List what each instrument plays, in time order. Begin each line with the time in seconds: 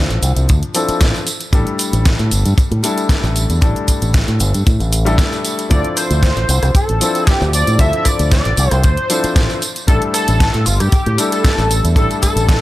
Already playing: grand piano F3 C4 D4 E4 A4
0.10 fingered electric bass A1, closed hi-hat, cabasa
0.22 fingered electric bass C2, open hi-hat, tambourine, cabasa
0.36 fingered electric bass C2, closed hi-hat, tambourine, cabasa
0.49 fingered electric bass D2, kick, closed hi-hat, tambourine, cabasa
0.63 closed hi-hat, cabasa
0.75 grand piano F3 C4 D4 E4 A4, open hi-hat, tambourine, cabasa
0.88 muted fingered electric bass stroke, closed hi-hat, tambourine, cabasa
1.01 fingered electric bass A1, kick, snare, closed hi-hat, tambourine, cabasa
1.15 tambourine, cabasa
1.27 open hi-hat, tambourine, cabasa
1.41 closed hi-hat, tambourine, cabasa
1.52 fingered electric bass A1, grand piano G3 A3 D4 E4 A4, kick, closed hi-hat, tambourine, cabasa
1.67 closed hi-hat, cabasa
1.79 open hi-hat, tambourine, cabasa
1.93 fingered electric bass A1, closed hi-hat, tambourine, cabasa
2.05 kick, snare, closed hi-hat, tambourine, cabasa
2.19 fingered electric bass A2, closed hi-hat, cabasa
2.31 fingered electric bass G1, open hi-hat, tambourine, cabasa
2.46 fingered electric bass G2, closed hi-hat, tambourine, cabasa
2.58 kick, closed hi-hat, tambourine, cabasa
2.71 fingered electric bass A2, closed hi-hat, cabasa
2.83 grand piano G3 A3 D4 E4 A4, open hi-hat, tambourine, cabasa
2.98 closed hi-hat, tambourine, cabasa
3.09 kick, snare, closed hi-hat, tambourine, cabasa
3.24 fingered electric bass A1, tambourine, cabasa
3.36 open hi-hat, tambourine, cabasa
3.49 fingered electric bass E2, closed hi-hat, tambourine, cabasa
3.61 fingered electric bass A1, grand piano G3 A3 D4 E4 A4, kick, closed hi-hat, tambourine, cabasa
3.76 closed hi-hat, cabasa
3.88 kick, open hi-hat, tambourine, cabasa
4.02 fingered electric bass A1, closed hi-hat, tambourine, cabasa
4.14 kick, snare, closed hi-hat, tambourine, cabasa
4.28 fingered electric bass A2, closed hi-hat, cabasa
4.40 fingered electric bass G1, open hi-hat, tambourine, cabasa
4.54 fingered electric bass G2, closed hi-hat, tambourine, cabasa
4.67 fingered electric bass A2, kick, closed hi-hat, tambourine, cabasa
4.80 fingered electric bass A1, closed hi-hat, tambourine, cabasa
4.93 open hi-hat, tambourine, cabasa
5.05 grand piano G3 A3 D4 E4 A4, closed hi-hat, tambourine, cabasa
5.18 kick, snare, closed hi-hat, tambourine, cabasa
5.33 tambourine, cabasa
5.45 open hi-hat, tambourine, cabasa
5.59 closed hi-hat, tambourine, cabasa
5.70 fingered electric bass D2, grand piano F3 C4 D4 E4 A4, analog synth lead D5, kick, closed hi-hat, tambourine, cabasa
5.84 closed hi-hat, cabasa
5.97 analog synth lead C5, cross-stick, open hi-hat, tambourine, cabasa
6.10 fingered electric bass D2, closed hi-hat, tambourine, cabasa
6.23 analog synth lead C5, kick, snare, closed hi-hat, tambourine, cabasa
6.37 fingered electric bass A1, closed hi-hat, cabasa
6.49 fingered electric bass C2, open hi-hat, tambourine, cabasa
6.63 fingered electric bass C2, cross-stick, closed hi-hat, tambourine, cabasa
6.75 analog synth lead A4, kick, closed hi-hat, tambourine, cabasa
6.89 fingered electric bass A1, closed hi-hat, cabasa
7.00 grand piano F3 C4 D4 E4 A4, open hi-hat, tambourine, cabasa
7.15 closed hi-hat, tambourine, cabasa
7.27 analog synth lead G4, kick, snare, closed hi-hat, tambourine, cabasa
7.41 fingered electric bass D2, tambourine, cabasa
7.53 analog synth lead D5, open hi-hat, tambourine, cabasa
7.67 fingered electric bass A2, closed hi-hat, tambourine, cabasa
7.79 fingered electric bass D2, grand piano F3 C4 D4 E4 A4, analog synth lead E5, kick, closed hi-hat, tambourine, cabasa
7.93 closed hi-hat, cabasa
8.05 analog synth lead D5, kick, cross-stick, open hi-hat, tambourine, cabasa
8.19 fingered electric bass D2, closed hi-hat, tambourine, cabasa
8.31 analog synth lead D5, kick, snare, closed hi-hat, tambourine, cabasa
8.45 fingered electric bass A1, closed hi-hat, cabasa
8.57 fingered electric bass C2, open hi-hat, tambourine, cabasa
8.71 fingered electric bass C2, analog synth lead C5, cross-stick, closed hi-hat, tambourine, cabasa
8.84 fingered electric bass D2, analog synth lead C5, kick, closed hi-hat, tambourine, cabasa
8.97 closed hi-hat, cabasa
9.10 grand piano F3 C4 D4 E4 A4, open hi-hat, tambourine, cabasa
9.23 muted fingered electric bass stroke, closed hi-hat, tambourine, cabasa
9.36 fingered electric bass A1, kick, snare, closed hi-hat, tambourine, cabasa
9.50 tambourine, cabasa
9.62 open hi-hat, tambourine, cabasa
9.76 closed hi-hat, tambourine, cabasa
9.87 fingered electric bass A1, grand piano G3 A3 D4 E4 A4, analog synth lead A4, kick, closed hi-hat, tambourine, cabasa
10.02 closed hi-hat, cabasa
10.14 analog synth lead A4, cross-stick, open hi-hat, tambourine, cabasa
10.28 fingered electric bass A1, closed hi-hat, tambourine, cabasa
10.40 kick, snare, closed hi-hat, tambourine, cabasa
10.54 fingered electric bass A2, closed hi-hat, cabasa
10.66 fingered electric bass G1, analog synth lead F4, open hi-hat, tambourine, cabasa
10.80 fingered electric bass G2, analog synth lead G4, cross-stick, closed hi-hat, tambourine, cabasa
10.92 analog synth lead G4, muted fingered electric bass stroke, kick, closed hi-hat, tambourine, cabasa
11.06 fingered electric bass A2, closed hi-hat, cabasa
11.18 grand piano G3 A3 D4 E4 A4, open hi-hat, tambourine, cabasa
11.32 analog synth lead A4, closed hi-hat, tambourine, cabasa
11.44 analog synth lead A4, kick, snare, closed hi-hat, tambourine, cabasa
11.58 fingered electric bass A1, tambourine, cabasa
11.71 open hi-hat, tambourine, cabasa
11.84 fingered electric bass E2, closed hi-hat, tambourine, cabasa
11.96 fingered electric bass A1, grand piano G3 A3 D4 E4 A4, analog synth lead A4, kick, closed hi-hat, tambourine, cabasa
12.11 closed hi-hat, tambourine, cabasa
12.22 analog synth lead A4, kick, cross-stick, open hi-hat, tambourine, cabasa
12.36 fingered electric bass A1, closed hi-hat, tambourine, cabasa
12.48 kick, snare, closed hi-hat, tambourine, cabasa